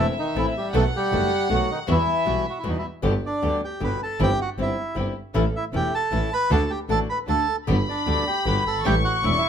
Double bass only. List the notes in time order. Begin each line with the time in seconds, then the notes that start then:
Already playing: E1
0.36 A1
0.74 B1
1.13 F#1
1.51 B1
1.89 E2
2.28 B1
2.66 E2
3.04 G1
3.44 D2
3.82 G1
4.20 G1
4.58 G1
4.97 G1
5.35 A1
5.73 E1
6.12 A1
6.51 D2
6.90 A1
7.29 D2
7.69 G1
8.07 D2
8.46 G1
8.66 G1
8.85 A1
9.24 E1